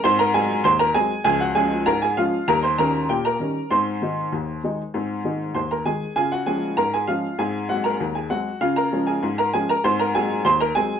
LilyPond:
<<
  \new Staff \with { instrumentName = "Upright piano" } { \time 2/4 \key des \major \tempo 4 = 98 <c'' c'''>16 <bes' bes''>16 <aes' aes''>8 <c'' c'''>16 <bes' bes''>16 <aes' aes''>8 | <aes' aes''>16 <ges' ges''>16 <aes' aes''>8 <bes' bes''>16 <aes' aes''>16 <f' f''>8 | <bes' bes''>16 <c'' c'''>16 <bes' bes''>8 <g' g''>16 <bes' bes''>8. | <c'' c'''>2~ |
<c'' c'''>4 <c'' c'''>16 <bes' bes''>16 <aes' aes''>8 | <aes' aes''>16 <ges' ges''>16 <aes' aes''>8 <bes' bes''>16 <aes' aes''>16 <f' f''>8 | <aes' aes''>8 <ges' ges''>16 <bes' bes''>8 <aes' aes''>16 <ges' ges''>8 | <f' f''>16 <bes' bes''>8 <aes' aes''>8 <bes' bes''>16 <aes' aes''>16 <bes' bes''>16 |
<c'' c'''>16 <bes' bes''>16 <aes' aes''>8 <c'' c'''>16 <bes' bes''>16 <aes' aes''>8 | }
  \new Staff \with { instrumentName = "Upright piano" } { \clef bass \time 2/4 \key des \major <aes, c'>8 <ges aes c'>8 ees,8 <ges aes c'>8 | <des, f>8 <f aes des'>8 aes,8 <f aes des'>8 | <ees, g>8 <ees g des'>8 bes,8 <ees g des'>8 | <aes, c'>8 <ees aes ees'>8 ees,8 <ees aes ees'>8 |
<aes, c'>8 <ees aes ees'>8 ees,8 <ees aes ees'>8 | <des f'>8 <f aes des'>8 aes,8 <f aes des'>8 | <aes, c'>8 <ges aes c'>8 ees,8 <ges aes c'>8 | des8 <f aes des'>8 aes,8 <f aes des'>8 |
<aes, c'>8 <ges aes c'>8 ees,8 <ges aes c'>8 | }
>>